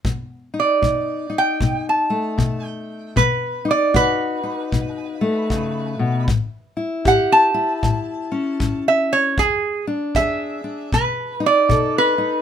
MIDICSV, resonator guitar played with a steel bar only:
0, 0, Header, 1, 2, 480
1, 0, Start_track
1, 0, Tempo, 776197
1, 34, Time_signature, 4, 2, 24, 8
1, 7679, End_track
2, 0, Start_track
2, 0, Title_t, "Resonator guitar played with a steel bar"
2, 0, Program_c, 0, 25
2, 368, Note_on_c, 0, 74, 60
2, 830, Note_off_c, 0, 74, 0
2, 855, Note_on_c, 0, 79, 72
2, 1158, Note_off_c, 0, 79, 0
2, 1169, Note_on_c, 0, 81, 54
2, 1640, Note_off_c, 0, 81, 0
2, 1640, Note_on_c, 0, 79, 62
2, 1952, Note_off_c, 0, 79, 0
2, 1961, Note_on_c, 0, 71, 69
2, 2272, Note_off_c, 0, 71, 0
2, 2292, Note_on_c, 0, 74, 70
2, 2443, Note_off_c, 0, 74, 0
2, 2450, Note_on_c, 0, 71, 81
2, 3862, Note_off_c, 0, 71, 0
2, 4376, Note_on_c, 0, 78, 84
2, 4525, Note_off_c, 0, 78, 0
2, 4529, Note_on_c, 0, 81, 83
2, 5460, Note_off_c, 0, 81, 0
2, 5492, Note_on_c, 0, 76, 71
2, 5641, Note_off_c, 0, 76, 0
2, 5644, Note_on_c, 0, 73, 72
2, 5797, Note_off_c, 0, 73, 0
2, 5807, Note_on_c, 0, 68, 73
2, 6091, Note_off_c, 0, 68, 0
2, 6281, Note_on_c, 0, 76, 80
2, 6744, Note_off_c, 0, 76, 0
2, 6764, Note_on_c, 0, 71, 72
2, 7069, Note_off_c, 0, 71, 0
2, 7089, Note_on_c, 0, 74, 75
2, 7391, Note_off_c, 0, 74, 0
2, 7410, Note_on_c, 0, 71, 83
2, 7679, Note_off_c, 0, 71, 0
2, 7679, End_track
0, 0, End_of_file